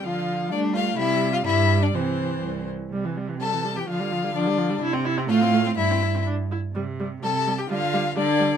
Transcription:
<<
  \new Staff \with { instrumentName = "Violin" } { \time 2/4 \key c \major \tempo 4 = 126 f''4 d''8 f''8 | e''8. f''16 e''8. d''16 | c''4. r8 | r4 a''8. g''16 |
f''4 d''4 | r4 f''4 | e''4 r4 | r4 a''8. g''16 |
f''4 d''4 | }
  \new Staff \with { instrumentName = "Violin" } { \time 2/4 \key c \major f'4 d'8 f'8 | e'8. f'16 e'8. d'16 | c'4. r8 | r4 a'8. g'16 |
f'4 d'4 | r4 f'4 | e'4 r4 | r4 a'8. g'16 |
f'4 d'4 | }
  \new Staff \with { instrumentName = "Viola" } { \clef bass \time 2/4 \key c \major f4 a4 | g4 g4 | e4. r8 | g16 e16 g16 e16 g16 e16 g16 e16 |
f16 g16 f16 g16 f16 g16 f16 g16 | e'16 c'16 e'16 c'16 a16 c'16 a16 c'16 | e'16 c'16 e'16 c'16 d'8 e'8 | g8 g8 g8 g8 |
g8 g8 g8 g8 | }
  \new Staff \with { instrumentName = "Cello" } { \clef bass \time 2/4 \key c \major d4 g4 | c4 g,4 | c4 c,4 | c2 |
d2 | c4 a,4 | g,4. r8 | c4 c4 |
d4 d4 | }
>>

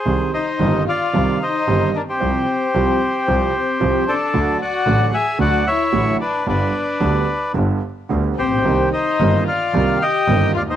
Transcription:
<<
  \new Staff \with { instrumentName = "Bandoneon" } { \time 4/4 \key c \minor \tempo 4 = 111 <aes' c''>8 <c'' ees''>4 <d'' f''>4 <c'' ees''>4 <bes' d''>16 <g' c''>16~ | <g' c''>2.~ <g' c''>8 <a' d''>8~ | <a' d''>8 <d'' fis''>4 <e'' aes''>8 <d'' fis''>8 <des'' e''>4 <b' d''>8 | <b' d''>2 r4. <g' c''>8~ |
<g' c''>8 <c'' ees''>4 <d'' f''>4 <ees'' g''>4 <d'' f''>16 <c'' ees''>16 | }
  \new Staff \with { instrumentName = "Violin section" } { \time 4/4 \key c \minor r8 ees'4 f'4 ees'4 d'16 c'16~ | c'2.~ c'8 d'8~ | d'8 fis'4 aes'8 fis'8 e'4 d'8 | d'2 r4. c'8~ |
c'8 ees'4 f'4 g'4 f'16 ees'16 | }
  \new Staff \with { instrumentName = "String section" } { \time 4/4 \key c \minor r1 | r1 | r1 | r1 |
<bes c' ees'>8 r8 <bes c' ees'>8 r8 <bes c' ees'>8 r8 <bes c' ees'>8 r8 | }
  \new Staff \with { instrumentName = "Grand piano" } { \clef bass \time 4/4 \key c \minor <c, c ees g c' g'>8 r8 <g,, g, ees g c' g'>8 r8 <c, c ees g c' g'>8 r8 <g,, g, ees g c' g'>8 r8 | <c, c f g c' g'>8 r8 <c, c f g c' g'>8 r8 <c, c f g c' g'>8 r8 <c, c f g c' g'>8 r8 | <d, d fis a fis'>8 r8 <a,, a, d fis a fis'>8 r8 <d, d fis a fis'>8 r8 <a,, a, d fis a fis'>8 r8 | <g,, g, d g b g'>8 r8 <d, d g b g'>8 r8 <g,, g, d g b g'>8 r8 <d, d g b g'>8 r32 a,,32 bes,,32 b,,32 |
<c, c ees bes c' g'>8 r8 <g,, g, ees bes c' g'>8 r8 <c, c ees bes c' g'>8 r8 <g,, g, ees bes c' g'>8 r32 d,32 ees,32 r32 | }
  \new Staff \with { instrumentName = "Double bass" } { \clef bass \time 4/4 \key c \minor c,8 r8 g,,8 r8 c,8 r8 g,,8 r8 | c,8 r8 c,8 r8 c,8 r8 c,8 r8 | d,8 r8 a,,8 r8 d,8 r8 a,,8 r8 | g,,8 r8 d,8 r8 g,,8 r8 d,8 bes,,8 |
c,8 r8 g,,8 r8 c,8 r8 g,,8 ees,8 | }
>>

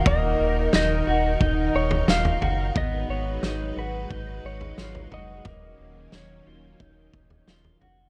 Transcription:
<<
  \new Staff \with { instrumentName = "Electric slide guitar" } { \time 4/4 \key ees \minor \tempo 4 = 89 ees''4 ees''4. des''8 f''4 | ees''8 des''4 ces''4 des''4 ees''8~ | ees''2. r4 | }
  \new Staff \with { instrumentName = "Clean electric guitar" } { \time 4/4 \key ees \minor bes4 ees'8 ges'8 ees'4 f'8 ges'8 | ces'4 ees'8 ges'8 ees'4 f'8 ges'8 | bes4 des'8 f'8 ees'4 f'8 ges'8 | }
  \new Staff \with { instrumentName = "String machine" } { \time 4/4 \key ees \minor << { <ees bes'>1 | <ges aes ces''>1 | <ees ges des'>1 | } \\ { ees'1~ | ees'1 | bes1 | } >> }
  \new Staff \with { instrumentName = "Sub bass" } { \clef bass \time 4/4 \key ees \minor ees,,8 ees,,8 ees,,8 ees,,8 ees,,8 ees,,8 ees,,8 ges,,8 | aes,,8 aes,,8 aes,,8 aes,,8 aes,,8 aes,,8 aes,,8 f,,8 | ees,,8 ees,,8 ees,,8 ees,,8 ees,,8 ees,,8 ees,,8 f,,8 | }
  \new DrumStaff \with { instrumentName = "Drums" } \drummode { \time 4/4 <bd tomfh>4 sn4 bd8. tomfh16 sn16 tomfh16 tomfh8 | <bd tomfh>4 sn4 bd8. tomfh16 sn16 tomfh16 tomfh8 | <bd tomfh>4 sn4 bd8 bd16 tomfh16 sn16 tomfh16 tomfh8 | }
>>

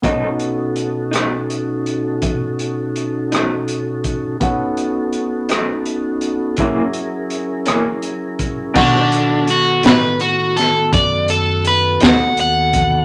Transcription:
<<
  \new Staff \with { instrumentName = "Overdriven electric guitar" } { \time 12/8 \key b \mixolydian \tempo 4. = 55 r1. | r1. | d'4 fis'8 b'8 fis'8 a'8 d''8 a'8 b'8 fis''8 fis''4 | }
  \new Staff \with { instrumentName = "Grand piano" } { \time 12/8 \key b \mixolydian <b fis' a' cis'' dis''>1. | <b fis' a' cis'' fis''>2. <fis gis' ais' cis'' e''>2. | <fis' a' fis'' cis'''>1. | }
  \new Staff \with { instrumentName = "Tonewheel organ" } { \time 12/8 \key b \mixolydian <b, cis' dis' fis' a'>1. | <b cis' dis' fis' a'>2. <fis cis' e' gis' ais'>2. | <dis b fis' a'>1. | }
  \new Staff \with { instrumentName = "Clean electric guitar" } { \clef bass \time 12/8 \key b \mixolydian <b, fis a dis'>8 r4 <b, fis a dis'>8 r2 r8 <b, fis a dis'>8 r4 | r4. <b, fis a dis'>8 r4 <fis, e ais cis'>8 r4 <fis, e ais cis'>8 r4 | <b, fis a dis'>8 r4 <b, fis a dis'>8 r2 r8 <b, fis a dis'>8 r4 | }
  \new Staff \with { instrumentName = "Upright bass" } { \clef bass \time 12/8 \key b \mixolydian r1. | r1. | b,4. a,4. fis,4. dis,4. | }
  \new DrumStaff \with { instrumentName = "Drums" } \drummode { \time 12/8 <hh bd>8 hh8 hh8 <hh ss>8 hh8 hh8 <hh bd>8 hh8 hh8 <hh ss>8 hh8 <hh bd>8 | <hh bd>8 hh8 hh8 <hh ss>8 hh8 hh8 <hh bd>8 hh8 hh8 <hh ss>8 hh8 <hh bd>8 | <cymc bd>8 hh8 hh8 <hh sn>8 hh8 <hh sn>8 <hh bd>8 hh8 hh8 <hh sn>8 hh8 <hh bd>8 | }
>>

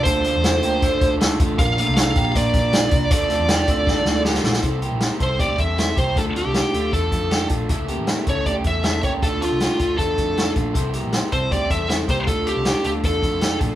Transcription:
<<
  \new Staff \with { instrumentName = "Lead electric guitar" } { \time 4/4 \key d \minor \tempo 4 = 157 c''2. r4 | f''4 f''4 d''2 | d''2. r4 | r4. c''8 d''8 e''8 e''8 c''8 |
a'8 g'4. a'4. r8 | r4. cis''8 d''8 e''8 e''8 cis''8 | a'8 f'4. a'4. r8 | r4. c''8 d''8 e''8 e''8 c''8 |
a'8 g'4 g'8 a'4. r8 | }
  \new Staff \with { instrumentName = "Clean electric guitar" } { \time 4/4 \key d \minor <d' a'>8 <a f'>8 <d' a'>8 <bes g'>8 <d' a'>4 <d' a'>8 <a f'>8 | <d' bes'>8 <a f'>8 <d' a'>8 <bes g'>8 <bes f'>4 <bes f'>4 | <a f'>8 <c' a'>8 <d' g'>8 <c' a'>8 <d' a'>4 <d' g'>8 <a f'>8 | <c' a'>8 <bes g'>4 <c' a'>8 <c' g'>8 <c' a'>8 <c' a'>8 <bes g'>8 |
<a f'>8 <c' a'>8 <d' g'>8 <a f'>8 <d' a'>4 <d' g'>8 <a f'>8 | <cis' a'>8 <bes g'>4 <cis' a'>8 <cis' g'>8 <cis' a'>8 <cis' a'>8 <bes g'>8 | <a f'>8 <c' a'>8 <d' g'>8 <a f'>8 <d' a'>4 <d' a'>8 <a f'>8 | <c' a'>8 <bes g'>4 <c' a'>8 <c' g'>8 <c' a'>8 <c' a'>8 <bes g'>8 |
<a f'>8 <c' a'>8 <d' g'>8 <a f'>8 <d' a'>4 <d' g'>8 <a f'>8 | }
  \new Staff \with { instrumentName = "Overdriven electric guitar" } { \time 4/4 \key d \minor <d a d' f' a'>4 <a d' f' a'>4 <d a d' f' a'>4 <a d' f' a'>4 | <bes, f bes d' f' bes'>8 <bes d' f' bes'>8 <bes d' f' bes'>4 <bes, f bes d' f' bes'>4 <bes d' f' bes'>4 | <d a d' f' a'>4 <a d' f' a'>4 <d a d' f' a'>4 <a d' f' a'>4 | <c e g c' e' c''>4 <g c' e' c''>8 <g c' e' c''>8 <c e g c' e' c''>4 <g c' e' c''>4 |
<d a d' f' a'>4 <a d' f' a'>8 <d' f' a'>8 <d a d' f' a'>4 <a d' f' a'>8 <d' f' a'>8 | <cis e a cis' e' a'>4 <a cis' e' a'>8 <a cis' e' a'>8 <cis e a cis' e' a'>4 <a cis' e' a'>8 <a cis' e' a'>8 | <d a d' f' a'>4 <a d' f' a'>8 <d' f' a'>8 <d a d' f' a'>4 <a d' f' a'>8 <d' f' a'>8 | <c e g c' e' c''>4 <g c' e' c''>8 <g c' e' c''>8 <c e g c' e' c''>4 <g c' e' c''>8 <g c' e' c''>8 |
<d a d' f' a'>4 <a d' f' a'>8 <d' f' a'>8 <d a d' f' a'>4 <a d' f' a'>8 <d' f' a'>8 | }
  \new Staff \with { instrumentName = "Picked electric bass" } { \clef bass \time 4/4 \key d \minor d,8. e,8. d,8 d8 d,4 a,,8 | bes,,8. c,8. bes,,8 bes,8 bes,,4 c,8 | d,8. e,8. d,8 d8 d,4 bes,,8 | c,8. bes,,8 r16 c,8 d,8 e,4 c,8 |
d,8. c,8 r16 d,8 e,8 f,4 bes,,8 | cis,8. a,,8 r16 cis,8 d,8 e,4 cis,8 | d,8. c,8 r16 d,8 e,8 f,4 bes,,8 | c,8. bes,,8 r16 c,8 d,8 e,4 c,8 |
d,8. c,8 r16 d,8 e,8 f,4 bes,,8 | }
  \new DrumStaff \with { instrumentName = "Drums" } \drummode { \time 4/4 <hh bd>8 hh8 <hh sn>8 hh8 <hh bd>8 <hh bd>8 <hh sn>8 <hh bd>8 | <hh bd>8 hh8 <hh sn>8 <hh bd>8 <hh bd>8 <hh bd>8 <hh sn>8 <hh bd>8 | <hh bd>8 hh8 <hh sn>8 <hh bd>8 <bd sn>8 sn8 sn16 sn16 sn16 sn16 | <hh bd>8 hh8 <hh sn>8 <hh bd>8 <hh bd>8 <hh bd>8 <hh sn>8 <hh bd>8 |
<hh bd>8 hh8 <hh sn>8 hh8 <hh bd>8 <hh bd>8 <hh sn>8 <hh bd>8 | <hh bd>8 hh8 <hh sn>8 <hh bd>8 <hh bd>8 <hh bd>8 <hh sn>8 <hh bd>8 | <hh bd>8 hh8 <hh sn>8 <hh bd>8 <hh bd>8 <hh bd>8 <hh sn>8 <hh bd>8 | <hh bd>8 hh8 <hh sn>8 <hh bd>8 <hh bd>8 <hh bd>8 <hh sn>8 <hh bd>8 |
<hh bd>8 hh8 <hh sn>8 hh8 <hh bd>8 <hh bd>8 <hh sn>8 <hh bd>8 | }
>>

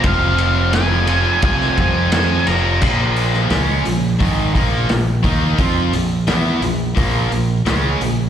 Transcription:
<<
  \new Staff \with { instrumentName = "Lead electric guitar" } { \time 4/4 \key f \dorian \tempo 4 = 86 f''4 aes''4 aes''8 aes''4 bes''8 | r1 | r1 | }
  \new Staff \with { instrumentName = "Overdriven electric guitar" } { \clef bass \time 4/4 \key f \dorian <f c' f' a'>4 <f c' f' a'>8 <f c' f' a'>8 <f c' f' a'>4 <f c' f' a'>8 <f c' f' a'>8 | <bes, f bes>4 <des aes des'>8 <bes, f>8 <aes, ees aes>8 <bes, f bes>8 <bes, f>8 <ees bes ees'>8 | <f c' f'>8 <bes, f>8 <e ces' e'>8 <bes, f>8 <bes, f bes>8 <bes, f>8 <des aes des'>8 <bes, f>8 | }
  \new Staff \with { instrumentName = "Distorted electric guitar" } { \clef bass \time 4/4 \key f \dorian <f, c f>4 <f, c f>8 <f, c f>8 <f, c f>4 <f, c f>8 <f, c f>8 | <bes, f bes>4 <des aes des'>8 <bes, f>8 <aes, ees aes>8 <bes, f bes>8 <bes, f>8 <ees bes ees'>8 | <f c' f'>8 <bes, f>8 <e ces' e'>8 <bes, f>8 <bes, f bes>8 <bes, f>8 <des aes des'>8 <bes, f>8 | }
  \new Staff \with { instrumentName = "Fingered electric bass" } { \clef bass \time 4/4 \key f \dorian f,,2 c,8 f,4 f,,8 | bes,,4 des,8 bes,,8 aes,,8 bes,,8 bes,,8 ees,8 | f,8 bes,,8 e,8 bes,,8 bes,,8 bes,,8 des,8 bes,,8 | }
  \new DrumStaff \with { instrumentName = "Drums" } \drummode { \time 4/4 <bd cymr>8 cymr8 <cymr sn>8 cymr8 <bd cymr>16 sn16 <bd cymr>8 <cymr sn>8 <cymr sn>8 | <cymc bd>8 hho16 sn16 <hho sn>8 hho8 <hho bd>8 <hho bd>8 <hho sn>8 <hho bd>8 | <hho bd>8 hho8 <hho sn>8 hho8 <hho bd>8 hho8 <hho sn>8 hho8 | }
>>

